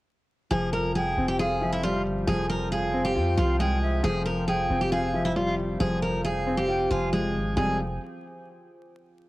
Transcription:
0.51 808-style bass F1, grand piano F3, analog synth pad F3 C4 F4 G5, steel-string acoustic guitar G#4
0.73 steel-string acoustic guitar A#4
0.95 steel-string acoustic guitar G#4, flute G5
1.17 808-style bass F1, grand piano C4
1.28 steel-string acoustic guitar G4
1.39 grand piano F4, steel-string acoustic guitar G#4, flute F5
1.61 grand piano F3, flute E5
1.72 steel-string acoustic guitar E4
1.83 grand piano G3, steel-string acoustic guitar F4
2.05 808-style bass G1
2.27 808-style bass F1, grand piano F3, steel-string acoustic guitar G#4
2.49 steel-string acoustic guitar A#4
2.72 steel-string acoustic guitar G#4, flute F5
2.94 grand piano C4
3.05 steel-string acoustic guitar G4
3.16 808-style bass F2, grand piano F4, flute G5
3.37 808-style bass C2, grand piano F3, steel-string acoustic guitar F4, flute F5
3.60 grand piano G#3, steel-string acoustic guitar G#4, flute G5
3.82 flute E5
4.04 808-style bass F1, grand piano F3, steel-string acoustic guitar G#4
4.26 steel-string acoustic guitar A#4
4.48 steel-string acoustic guitar G#4, flute G5
4.70 808-style bass F1, grand piano C4
4.81 steel-string acoustic guitar G4
4.92 grand piano F4, steel-string acoustic guitar G#4, flute F5
5.14 grand piano F3, flute E5
5.25 steel-string acoustic guitar E4
5.36 grand piano G3, steel-string acoustic guitar F4
5.80 808-style bass F1, grand piano F3, steel-string acoustic guitar G#4
6.02 steel-string acoustic guitar A#4
6.24 steel-string acoustic guitar G#4, flute F5
6.47 grand piano C4
6.57 steel-string acoustic guitar G4
6.68 grand piano F4, flute G5
6.91 808-style bass F1, grand piano F3, steel-string acoustic guitar F4, flute G#5
7.13 grand piano G#3, steel-string acoustic guitar G#4
7.35 808-style bass G#1
7.57 808-style bass F1, analog synth pad F3 C4 G4 G#4, grand piano F3 G3 G#3 C4, steel-string acoustic guitar G#4, flute G#5

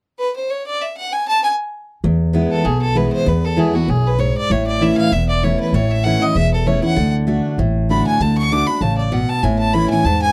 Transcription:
0.19 fiddle B4
0.36 fiddle C5
0.50 fiddle C#5
0.67 fiddle D5
0.81 fiddle E5
0.97 fiddle F#5
1.12 fiddle G#5
1.28 fiddle A5
1.44 fiddle G#5
2.04 upright bass E2, steel-string acoustic guitar E2
2.33 steel-string acoustic guitar E3 G#3 B3 E4
2.51 fiddle A4
2.65 upright bass B1, steel-string acoustic guitar B2, fiddle G#4
2.81 fiddle A4
2.95 steel-string acoustic guitar E3 G#3 B3 E4, fiddle B4
3.12 fiddle C5
3.26 steel-string acoustic guitar E2, upright bass E2, fiddle B4
3.44 fiddle A4
3.57 steel-string acoustic guitar E3 G#3 B3 E4, fiddle G#4
3.73 steel-string acoustic guitar B3 E4, fiddle F#4
3.88 upright bass B1, steel-string acoustic guitar F#2, fiddle G#4
4.06 fiddle B4
4.19 steel-string acoustic guitar G#2, fiddle C#5
4.37 fiddle D5
4.50 upright bass A1, steel-string acoustic guitar A2, fiddle C#5
4.67 fiddle D5
4.81 steel-string acoustic guitar E3 A3 C#4 E4, fiddle E5
4.97 fiddle F5
5.12 upright bass E1, steel-string acoustic guitar E2, fiddle E5
5.29 fiddle D5
5.43 steel-string acoustic guitar E3 A3 C#4 E4, fiddle C#5
5.60 fiddle B4
5.73 upright bass A1, steel-string acoustic guitar A2, fiddle C#5
5.91 fiddle E5
6.04 steel-string acoustic guitar E3 A3 C#4 E4, fiddle F#5
6.20 steel-string acoustic guitar C#4 E4, fiddle D#5
6.34 upright bass E1, steel-string acoustic guitar E2, fiddle E5
6.54 fiddle A4
6.66 steel-string acoustic guitar E3 A3 C#4 E4, fiddle C#5
6.83 steel-string acoustic guitar C#4 E4, fiddle F#5
6.96 upright bass D2, steel-string acoustic guitar D3
7.27 steel-string acoustic guitar D3 A3 D4 F#4
7.58 upright bass A1, steel-string acoustic guitar A2
7.89 steel-string acoustic guitar D3 A3 D4 F#4, fiddle B5
8.07 fiddle G#5
8.20 upright bass D2, steel-string acoustic guitar D3, fiddle A5
8.37 fiddle C#6
8.52 steel-string acoustic guitar D3 A3 D4 F#4, fiddle D6
8.67 steel-string acoustic guitar D4 F#4, fiddle B5
8.81 upright bass A1, steel-string acoustic guitar C#3, fiddle A5
8.97 fiddle D5
9.12 steel-string acoustic guitar B2, fiddle F#5
9.29 fiddle A5
9.43 upright bass A1, steel-string acoustic guitar A2, fiddle G#5
9.59 fiddle A5
9.73 steel-string acoustic guitar E3 A3 C#4 E4, fiddle B5
9.90 steel-string acoustic guitar C#4 E4, fiddle G#5
10.04 upright bass E2, steel-string acoustic guitar G#2, fiddle A5
10.22 fiddle G#5

